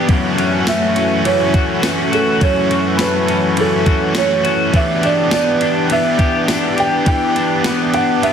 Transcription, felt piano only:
0.69 1.27 E5 medium
1.26 2.15 C#5 medium
2.15 2.43 A4 medium
2.43 3.02 C#5 medium
3.01 3.60 B4 medium
3.61 4.19 A4 medium
4.18 4.77 C#5 loud
4.76 5.05 E5 medium
5.05 5.32 D5 medium
5.34 5.93 D5 loud
5.92 6.81 E5 medium
6.80 7.06 G5 loud
7.08 7.62 G5 loud
7.94 8.24 F#5 medium
8.23 8.33 E5 loud

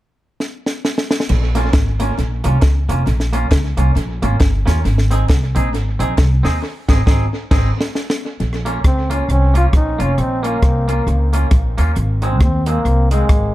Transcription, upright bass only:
1.30 1.74 A#1 loud
1.74 2.11 G#1 loud
2.18 2.41 A#1 medium
2.45 2.60 C2 medium
2.62 2.85 C#2 medium
2.89 3.04 F1 medium
3.07 3.45 A#1 loud
3.52 3.74 C#2 medium
3.78 3.93 C2 medium
3.96 4.18 A#1 loud
4.22 4.38 G#1 loud
4.40 4.62 G1 medium
4.67 4.82 D#2 medium
4.85 5.23 G#1 loud
5.30 5.52 C2 medium
5.56 5.74 A#1 medium
5.74 5.96 G#1 loud
6.00 6.15 A#1 loud
6.18 6.40 C2 medium
6.44 6.60 D#2 medium
6.89 7.01 G#1 loud
7.07 7.25 G#1 loud
7.51 7.69 G#1 loud
8.40 8.78 A#1 loud
8.85 9.22 C#2 medium
9.29 9.67 C2 medium
9.73 9.96 A#1 medium
10.00 10.15 F1 medium
10.18 10.56 A#1 medium
10.62 11.00 C2 medium
11.07 11.45 C#2 loud
11.51 11.74 A#1 medium
11.78 11.94 D#2 medium
11.96 12.41 G#1 loud
12.41 12.79 D#2 loud
12.85 13.23 C2 medium
13.30 13.52 G#1 medium

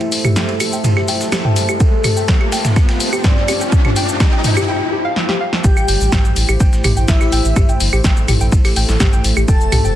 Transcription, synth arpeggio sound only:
0.01 0.09 G5 medium
0.25 0.30 G4 medium
0.36 0.45 G5 medium
0.60 0.66 G4 medium
0.73 0.81 G5 medium
0.97 1.02 G4 medium
1.08 1.17 G5 medium
1.32 1.38 G4 medium
1.45 1.53 G5 medium
1.69 1.74 G4 medium
1.80 1.89 G5 medium
2.04 2.10 G4 medium
2.17 2.25 G5 medium
2.41 2.46 G4 medium
2.52 2.61 G5 medium
2.76 2.82 G4 medium
2.89 2.97 G5 medium
3.13 3.18 G4 medium
3.24 3.33 G5 medium
3.48 3.54 G4 medium
3.61 3.69 G5 medium
3.85 3.90 G4 medium
3.96 4.05 G5 medium
4.20 4.26 G4 medium
4.33 4.41 G5 medium
4.57 4.62 G4 medium
4.68 4.77 G5 medium
4.92 4.96 G4 medium
5.05 5.13 F5 loud
5.29 5.37 G4 medium
5.40 5.49 F5 medium
5.77 5.82 G4 medium
5.88 5.97 G5 medium
6.12 6.18 G4 medium
6.25 6.33 G5 medium
6.49 6.54 G4 medium
6.60 6.69 G5 medium
6.84 6.90 G4 medium
6.97 7.05 G5 medium
7.21 7.26 G4 medium
7.32 7.41 G5 medium
7.56 7.62 G4 medium
7.69 7.77 G5 medium
7.93 7.98 G4 medium
8.04 8.13 G5 medium
8.28 8.34 G4 medium
8.41 8.49 G5 medium
8.65 8.70 G4 medium
8.76 8.85 G5 medium
9.00 9.06 G4 medium
9.13 9.21 G5 medium
9.37 9.42 G4 medium
9.48 9.57 G5 medium
9.72 9.78 G4 medium
9.85 9.93 G5 medium

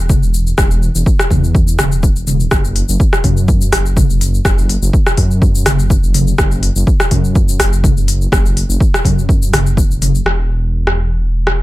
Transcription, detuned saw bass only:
0.00 0.16 E1 medium
0.22 0.52 E1 medium
0.58 0.89 E1 loud
0.95 1.03 E1 medium
1.30 1.80 E2 medium
1.79 2.10 E1 medium
2.16 2.46 E1 medium
2.51 2.82 F#1 loud
2.89 2.97 F#1 medium
3.24 3.74 F#2 medium
3.73 4.04 F#1 medium
4.10 4.40 F#1 medium
4.45 4.76 F#1 loud
4.82 4.90 F#1 medium
5.18 5.67 F#2 medium
5.66 5.97 F#1 medium
6.03 6.33 F#1 medium
6.39 6.70 F#1 loud
6.76 6.84 F#1 medium
7.11 7.61 F#2 medium
7.60 7.91 F#1 medium
7.97 8.27 F#1 medium
8.32 8.63 F#1 loud
8.69 8.77 F#1 medium
9.05 9.55 F#2 medium
9.53 9.84 F#1 medium
9.90 10.20 F#1 medium
10.25 11.63 E1 medium

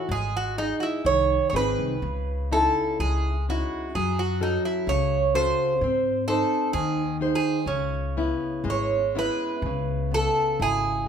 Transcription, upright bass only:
0.09 0.72 G#1 medium
1.05 1.37 C2 medium
1.53 1.76 G#1 medium
1.79 2.01 C2 medium
2.02 2.66 C#2 medium
3.00 3.62 C#2 medium
3.95 4.56 F#2 medium
4.87 5.48 C#2 medium
5.81 6.41 G#2 medium
6.73 7.34 D#2 medium
7.66 8.30 C#2 medium
8.64 9.28 G#1 medium
9.62 10.25 C#2 medium
10.60 11.08 G#1 medium

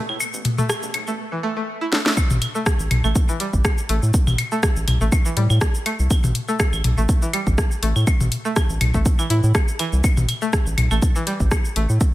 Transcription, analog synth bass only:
0.09 0.18 A2 medium
0.34 0.43 A1 loud
0.83 0.92 A1 loud
0.94 1.05 B1 medium
1.08 1.19 A1 medium
2.31 2.40 A1 loud
2.80 2.89 A1 loud
2.91 3.02 B1 medium
3.04 3.13 A1 medium
3.53 3.62 A1 medium
3.89 4.00 A1 loud
4.03 4.12 A2 medium
4.27 4.36 A1 loud
4.76 4.85 A1 loud
4.88 4.98 B1 medium
5.01 5.10 A1 medium
5.37 5.47 A2 medium
5.50 5.59 A2 loud
5.99 6.08 C2 medium
6.24 6.33 A1 loud
6.73 6.82 A1 loud
6.84 6.95 B1 medium
6.98 7.07 A1 medium
7.47 7.56 A1 medium
7.83 7.93 A1 loud
7.96 8.05 A2 medium
8.21 8.30 A1 loud
8.70 8.79 A1 loud
8.81 8.92 B1 medium
8.94 9.03 A1 medium
9.30 9.41 A2 medium
9.43 9.53 A2 loud
9.93 10.02 C2 medium
10.17 10.26 A1 loud
10.66 10.76 A1 loud
10.78 10.88 B1 medium
10.91 11.00 A1 medium
11.40 11.49 A1 loud
11.76 11.87 A1 loud
11.89 11.98 A2 medium

